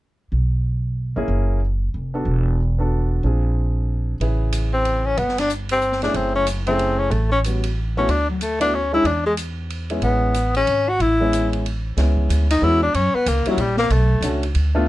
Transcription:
0.32 B1
1.16 G#1 A#3 C#4 E4 G#4
1.28 F#1
1.94 F1
2.14 B3 D4 F#4 A4
2.25 E1
2.79 B3 D4 F#4 A4
3.23 A#1 C4 D4 F4 G#4
4.20 A1 C#3 E4 G#4 B4, ride
4.52 hi-hat pedal, ride
4.74 C4
4.85 ride
5.06 C#4
5.17 G1 B3, ride
5.28 snare
5.38 D4, snare, ride
5.49 hi-hat pedal
5.69 C4, ride
5.81 hi-hat pedal
5.92 snare
6.02 A3 C#4 D4 E4 G#4, snare, ride
6.14 F#1 C4, ride
6.35 C#4
6.47 hi-hat pedal, ride
6.67 C#3 A3 C4 E4 G#4, ride
6.79 ride
6.99 C#4
7.11 A1 A3, ride
7.32 C#4
7.44 G3 B3 C#4 F#4, hi-hat pedal, ride
7.64 ride
7.97 A3 B3 C#4 E4 F#4
8.08 D2 D4, ride
8.30 F#3
8.41 A3, hi-hat pedal, ride
8.60 A3 B3 D4 E4 F#4, ride
8.74 C#4
8.92 G#3 C#4 D4 E4
9.04 E2 D4, ride
9.26 G#3
9.37 hi-hat pedal, ride
9.70 ride
9.90 G#3 B3 C#4 E4, ride
10.02 A1 B3, ride
10.34 hi-hat pedal, ride
10.55 C#4, ride
10.67 G#1, ride
10.89 F#4
11.00 A1 E4, ride
11.20 G#3 B3 C#4 E4
11.33 hi-hat pedal, ride
11.53 ride
11.66 ride
11.97 C#2 G#3 B3 C#4 E4, snare, ride
12.17 kick
12.29 D2, hi-hat pedal, ride
12.50 D#4, ride
12.62 E2 G#3 B3 C#4 E4 F#4
12.83 D4
12.94 F#2 C#4, ride
13.14 B3, muted upright bass stroke
13.26 C#2 A#3, hi-hat pedal, ride
13.45 G3 A#3 C#4 E4, muted upright bass stroke, ride
13.50 F#3
13.57 A#1 G3, ride
13.77 A#3, snare
13.90 B1 A3, ride
14.21 C#2 A3 C#4 D4 F#4, hi-hat pedal, ride
14.43 ride
14.55 D2, ride
14.75 A3 B3 D4 F4

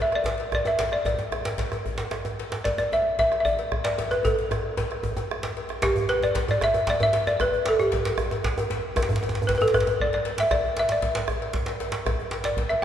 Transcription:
0.02 E5
0.12 D5, bombo rim, cowbell, djembe slap
0.24 bombo rim, djembe slap, djembe tone, djembe bass
0.38 cowbell, djembe slap
0.52 D5, bombo rim, bombo low, djembe slap, djembe tone
0.65 E5, bombo rim, cowbell, djembe tone
0.79 bombo rim, cowbell, djembe slap, djembe tone
0.92 D5, bombo rim
1.05 D5, bombo low, cowbell, djembe tone, djembe bass
1.19 bombo rim, djembe slap, djembe tone
1.32 bombo rim, cowbell, djembe slap, djembe tone
1.45 djembe slap
1.58 bombo low, cowbell, djembe slap
1.72 bombo rim, cowbell, djembe slap, djembe tone
1.85 bombo rim, djembe tone, djembe bass
1.98 cowbell, djembe slap
2.00 djembe slap
2.11 bombo rim, djembe slap
2.13 djembe slap
2.25 bombo rim, cowbell, djembe tone
2.39 bombo rim, cowbell, djembe slap
2.52 bombo rim, djembe slap
2.64 D5, bombo low, cowbell, djembe slap, djembe bass
2.78 D5, bombo rim, djembe slap, djembe tone
2.92 E5, cowbell, djembe tone
3.19 E5, bombo low, cowbell, djembe slap
3.32 bombo rim, cowbell, djembe slap
3.40 E5
3.45 D5, bombo rim, djembe tone, djembe bass
3.59 cowbell, djembe slap
3.72 bombo rim, bombo low
3.84 D5, bombo rim, cowbell, djembe slap
3.98 bombo rim, cowbell, djembe slap, djembe tone
4.11 B4, bombo rim, djembe tone
4.25 A4, bombo low, cowbell, djembe tone, djembe bass
4.39 djembe slap
4.51 bombo rim, cowbell, djembe slap, djembe tone
4.77 bombo rim, bombo low, cowbell, djembe slap, djembe tone
4.91 bombo rim, cowbell, djembe slap
5.03 djembe tone, djembe bass
5.17 cowbell, djembe slap, djembe tone
5.30 bombo rim, djembe bass
5.43 bombo rim, cowbell, djembe slap, djembe bass
5.57 cowbell, djembe slap
5.69 bombo rim, djembe slap
5.82 G4, bombo rim, bombo low, cowbell, djembe slap, djembe bass
5.96 bombo rim, djembe tone, djembe bass
6.09 B4, cowbell, djembe slap
6.23 D5, djembe tone
6.35 bombo low, cowbell, djembe slap
6.48 D5, bombo rim, cowbell, djembe tone, djembe bass
6.61 E5, bombo rim, djembe slap, djembe bass
6.74 cowbell, djembe tone
6.87 D5, bombo low, djembe slap
7.00 E5, cowbell, djembe tone, djembe bass
7.13 cowbell, djembe slap
7.27 D5, djembe tone
7.40 B4, bombo rim, bombo low, cowbell, djembe bass
7.53 bombo rim, djembe tone
7.66 A4, cowbell, djembe slap
7.79 G4, djembe tone
7.92 bombo low, cowbell, djembe slap, djembe tone
8.05 bombo rim, cowbell, djembe slap
8.18 bombo rim, djembe tone, djembe bass
8.31 cowbell, djembe tone
8.44 bombo low, djembe slap
8.57 cowbell, djembe tone
8.70 cowbell, djembe slap, djembe tone
8.96 bombo rim, bombo low, cowbell, djembe tone, djembe bass
9.03 djembe slap
9.09 bombo rim, djembe tone, djembe bass
9.16 djembe slap
9.23 cowbell, djembe tone
9.29 djembe tone
9.35 djembe slap
9.42 djembe bass
9.47 B4, bombo low, cowbell, djembe slap
9.55 B4, djembe tone
9.61 A4, bombo rim, cowbell, djembe tone
9.68 djembe slap
9.74 B4, bombo rim, djembe bass
9.80 djembe slap
9.87 cowbell, djembe tone
10.00 D5, bombo low
10.13 D5, cowbell, djembe tone
10.25 cowbell, djembe slap
10.38 E5, djembe slap
10.51 D5, bombo rim, bombo low, cowbell, djembe slap, djembe bass
10.64 bombo rim, djembe tone
10.77 E5, cowbell, djembe slap
10.89 D5, bombo rim, djembe slap
11.02 bombo rim, bombo low, cowbell, djembe slap
11.15 bombo rim, cowbell, djembe slap, djembe tone
11.28 bombo rim, djembe bass
11.42 cowbell, djembe slap
11.53 bombo low, djembe slap
11.66 cowbell, djembe slap, djembe tone
11.80 cowbell, djembe slap
11.92 bombo rim, djembe slap
12.06 bombo rim, bombo low, cowbell, djembe bass
12.19 bombo rim, djembe tone
12.31 cowbell, djembe slap
12.44 D5, djembe slap
12.57 bombo low, cowbell, djembe slap
12.69 E5, bombo rim, cowbell, djembe tone

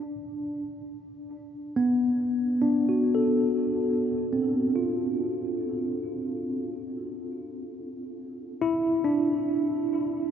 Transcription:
Already playing: D4
1.76 B3
2.62 D4
2.89 F#4
3.15 A4
4.33 C4
4.76 F4
8.62 E4
9.04 D4

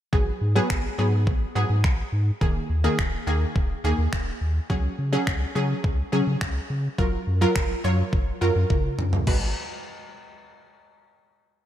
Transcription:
0.13 G#1 F#3 B3 G#4, kick
0.41 G#2
0.56 F#3 B3 G#4
0.70 G#1, finger snap, kick
0.98 G#2 F#3 B3 G#4
1.27 G#1, kick
1.55 G#2 F#3 B3 G#4
1.70 G#2
1.84 G#1, finger snap, kick
2.12 G#2
2.41 D#1 D#3 A#3 G#4, kick
2.70 D#2
2.84 D#3 A#3 G#4
2.99 D#1, finger snap, kick
3.27 D#2 D#3 A#3 G#4
3.56 D#1, kick
3.84 D#2 D#3 A#3 G#4
3.98 D#2
4.13 D#1, finger snap, kick
4.41 D#2
4.70 C#2 F#3 C#4 G#4, kick
4.99 C#3
5.13 F#3 C#4 G#4
5.27 C#2, finger snap, kick
5.55 C#3 F#3 C#4 G#4
5.84 C#2, kick
6.12 C#3 F#3 C#4 G#4
6.27 C#3
6.41 C#2, finger snap, kick
6.70 C#3
6.98 F#1 F#3 F4 A#4, kick
7.27 F#2
7.41 F#3 F4 A#4
7.56 F#1, finger snap, kick
7.84 F#2 F#3 F4 C#5
8.13 F#1, kick
8.41 F#2 F#3 F4 A#4
8.56 F#2
8.70 F#1, kick, high tom
8.99 F#2, mid tom
9.13 floor tom
9.27 G#1 G#3 F#4 B4, kick, crash

